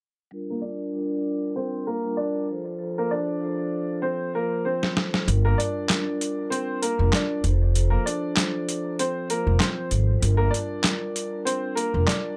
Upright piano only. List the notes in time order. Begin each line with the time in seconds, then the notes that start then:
0.50 A#3 A#4
0.62 D4 D5
1.56 C4 C5
1.87 A#3 A#4
2.17 D4 D5
2.98 A#3 A#4
3.11 D4 D5
4.02 C4 C5
4.35 A#3 A#4
4.65 C4 C5
5.45 A#3 A#4
5.58 D4 D5
6.50 C4 C5
6.82 A#3 A#4
7.15 D4 D5
7.90 A#3 A#4
8.06 D4 D5
8.99 C4 C5
9.30 A#3 A#4
9.59 C4 C5
10.37 A#3 A#4
10.51 D4 D5
11.45 C4 C5
11.75 A#3 A#4
12.07 D4 D5